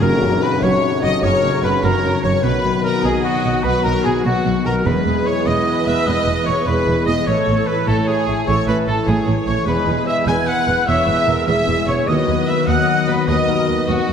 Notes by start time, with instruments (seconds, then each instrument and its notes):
Already playing: harp A#3 C#4 A#4 C#5 F#5 C#6
0.01 double bass section F#1, cello section F#2, harp F#2, trombone section C#3 F#3, french horn section C#4 F#4, clarinet A#4, violin section A#4, oboe A#4, flute section A#5, tam-tam
0.13 harp C#3
0.22 double bass section F#1, cello section F#2, harp F#3
0.32 harp F#4
0.42 violin section B4, clarinet B4, oboe B4, harp C#5, flute section B5
0.52 harp F#4
0.62 double bass section F#1, cello section F#2, trombone section C#3 F#3, french horn section C#4 F#4, violin section C#5, oboe C#5, clarinet C#5, harp F#5, flute section C#6
0.73 harp C#6
0.82 harp F#5
0.93 harp C#6
1.02 double bass section F#1, cello section F#2, clarinet D#5, violin section D#5, oboe D#5, harp F#5, flute section D#6
1.13 harp C#6
1.22 double bass section F#1, cello section F#2, trombone section C#3 F#3, french horn section C#4 F#4, viola section A#4, violin section C#5, oboe C#5, clarinet C#5, harp F#5, flute section C#6
1.33 harp C#6
1.43 double bass section F#1, cello section F#2, harp F#5
1.54 harp F#4
1.63 double bass section F#1, cello section F#2, violin section B4, oboe B4, clarinet B4, harp C#5, flute section B5
1.74 harp F#4
1.83 double bass section F#1, cello section F#2, trombone section C#3 F#3, harp F#3, french horn section C#4 F#4, violin section A#4, clarinet A#4, oboe A#4, viola section C#5, flute section A#5
1.94 harp C#3
2.03 double bass section F#1, cello section F#2, harp F#3
2.14 harp C#3
2.23 double bass section F#1, cello section F#2, harp F#3, violin section C#5, clarinet C#5, oboe C#5, flute section C#6
2.34 harp C#3
2.43 double bass section B1, cello section B2, harp B2, trombone section D#3 F#3, french horn section B3 F#4, viola section B4, oboe B4, violin section B4, clarinet B4, flute section B5
2.54 harp B3
2.63 double bass section B1, cello section B2, harp F#3
2.74 harp D#4
2.83 violin section A#4, clarinet A#4, oboe A#4, harp B4, flute section A#5
2.95 harp F#4
3.03 double bass section B1, cello section B2, violin section G#4, clarinet G#4, oboe G#4, viola section D#5, harp D#5, flute section G#5
3.15 harp B5
3.23 violin section F#4, clarinet F#4, oboe F#4, harp D#5, flute section F#5
3.35 harp B5
3.44 double bass section B1, cello section B2, harp D#5
3.55 harp B5
3.63 double bass section B1, cello section B2, trombone section D#3 F#3, french horn section B3 F#4, viola section F#4, oboe B4, clarinet B4, violin section B4, harp D#5, flute section B5
3.75 harp B5
3.83 double bass section B1, cello section B2, oboe A#4, clarinet A#4, violin section A#4, harp D#5, flute section A#5
3.95 harp F#4
4.03 double bass section B1, cello section B2, clarinet G#4, violin section G#4, oboe G#4, harp B4, flute section G#5
4.15 harp D#4
4.24 double bass section B1, cello section B2, trombone section D#3 F#3, harp F#3, french horn section B3 F#4, clarinet F#4, violin section F#4, oboe F#4, flute section F#5
4.35 harp B3
4.45 double bass section B1, cello section B2, harp F#3
4.55 harp B3
4.65 double bass section B1, cello section B2, harp F#3, clarinet A#4, violin section A#4, oboe A#4, flute section A#5
4.75 harp B3
4.85 double bass section E1, cello section E2, harp E3, trombone section E3 G#3, french horn section B3 E4, viola section G#4, violin section B4, oboe B4, clarinet B4, flute section B5
4.96 harp G#3
5.05 double bass section E1, cello section E2, harp E4
5.15 harp B4
5.26 harp G#4, violin section C#5, oboe C#5, clarinet C#5, flute section C#6
5.46 double bass section E1, cello section E2, viola section B4, oboe D#5, violin section D#5, clarinet D#5, harp B5, flute section D#6
5.57 harp G#5
5.67 harp B5
5.77 harp G#5
5.85 double bass section E1, cello section E2, clarinet E5, violin section E5, oboe E5, harp B5, flute section E6
5.96 harp G#5
6.06 double bass section E1, cello section E2, clarinet D#5, oboe D#5, violin section D#5, harp B5, flute section D#6
6.16 harp G#5
6.26 double bass section E1, cello section E2, harp B5
6.37 harp E5
6.46 double bass section E1, cello section E2, harp G#4, oboe C#5, clarinet C#5, violin section C#5, flute section C#6
6.57 harp B4
6.66 double bass section E1, cello section E2, trombone section E3 G#3, french horn section B3 E4, harp E4, viola section G#4, clarinet B4, violin section B4, oboe B4, flute section B5
6.77 harp G#3
6.87 double bass section E1, cello section E2, harp E4
6.97 harp G#3
7.06 double bass section E1, cello section E2, harp E4, clarinet D#5, violin section D#5, oboe D#5, flute section D#6
7.17 harp G#3
7.26 double bass section A1, cello section A2, harp A2, trombone section E3 A3, french horn section A3 E4, viola section A4, violin section C#5, oboe C#5, clarinet C#5, flute section C#6
7.37 harp E3
7.47 double bass section A1, cello section A2, harp A3
7.58 harp E4
7.66 violin section B4, oboe B4, clarinet B4, harp C#5, flute section B5
7.78 harp E4
7.86 double bass section A1, cello section A2, trombone section E3 A3, french horn section A3 E4, violin section A4, clarinet A4, oboe A4, viola section C#5, harp E5, flute section A5
7.98 harp C#6
8.07 violin section G#4, oboe G#4, clarinet G#4, harp E5, flute section G#5
8.27 double bass section A1, cello section A2, harp E5
8.38 harp A5
8.47 double bass section A1, cello section A2, trombone section E3 A3, french horn section A3 E4, viola section A4, violin section C#5, oboe C#5, clarinet C#5, harp E5, flute section C#6
8.59 harp A5
8.66 double bass section A1, cello section A2, oboe B4, violin section B4, clarinet B4, harp E5, flute section B5
8.78 harp A4
8.87 double bass section A1, cello section A2, harp E4, violin section A4, oboe A4, clarinet A4, flute section A5
8.98 harp A3
9.07 double bass section A1, cello section A2, harp E3, oboe G#4, violin section G#4, clarinet G#4, viola section C#5, flute section G#5
9.18 harp A3
9.27 double bass section A1, cello section A2, harp E3
9.38 harp A3
9.46 double bass section A1, cello section A2, harp E3, violin section C#5, oboe C#5, clarinet C#5, flute section C#6
9.58 harp A3
9.66 double bass section E1, cello section E2, trombone section E3 G#3, harp E3, french horn section B3 E4, viola section G#4, clarinet B4, oboe B4, violin section B4, flute section B5
9.87 double bass section E1, cello section E2, harp E4
9.98 harp B4
10.07 harp G#4, oboe E5, clarinet E5, violin section E5, flute section E6
10.18 harp E5
10.27 double bass section E1, cello section E2, trombone section E3 G#3, french horn section B3 E4, viola section B4, clarinet G#5, oboe G#5, violin section G#5, harp B5, flute section G#6
10.38 harp G#5
10.47 oboe F#5, violin section F#5, clarinet F#5, harp B5, flute section F#6
10.58 harp G#5
10.67 double bass section E1, cello section E2, harp B5
10.79 harp G#5
10.87 double bass section E1, cello section E2, trombone section E3 G#3, french horn section B3 E4, viola section C#5, violin section E5, oboe E5, clarinet E5, harp B5, flute section E6
10.98 harp G#5
11.07 double bass section E1, cello section E2, viola section B4, harp B5
11.19 harp E5
11.28 double bass section E1, cello section E2, harp G#4, viola section A#4
11.38 harp B4
11.46 double bass section E1, cello section E2, trombone section E3 G#3, french horn section B3 E4, harp E4, viola section G#4, oboe E5, clarinet E5, violin section E5, flute section E6
11.59 harp G#3
11.67 double bass section E1, cello section E2, harp E4
11.79 harp G#3
11.87 double bass section E1, cello section E2, harp E4, clarinet C#5, violin section C#5, oboe C#5, flute section C#6
11.98 harp G#3
12.06 double bass section D#2, cello section D#2, harp D#3, trombone section D#3 F#3, french horn section B3 F#4, viola section B4, clarinet D#5, oboe D#5, violin section D#5, flute section D#6
12.18 harp D#4
12.28 cello section D#2, double bass section D#2, harp F#3
12.38 harp F#4
12.47 harp B4, clarinet E5, oboe E5, violin section E5, flute section E6
12.58 harp F#4
12.67 double bass section D#2, cello section D#2, trombone section D#3 F#3, french horn section B3 F#4, viola section D#5, clarinet F#5, oboe F#5, harp F#5, violin section F#5, flute section F#6
12.78 harp B5
12.88 harp F#5
12.99 harp B5
13.08 double bass section D#2, cello section D#2, clarinet B4, oboe B4, violin section B4, harp F#5, flute section B5
13.19 harp B5
13.27 double bass section D#2, cello section D#2, trombone section D#3 F#3, french horn section B3 F#4, viola section B4, violin section D#5, oboe D#5, clarinet D#5, harp F#5, flute section D#6
13.39 harp B5
13.48 double bass section D#2, cello section D#2, viola section A#4, harp F#5
13.59 harp F#4
13.68 double bass section D#2, cello section D#2, harp B4, viola section B4
13.79 harp F#4
13.87 cello section D#2, double bass section D#2, trombone section D#3 F#3, harp F#3, french horn section B3 F#4, clarinet F#4, oboe F#4, violin section F#4, viola section D#5, flute section F#5
13.98 harp D#4
14.08 double bass section D#2, cello section D#2, harp F#3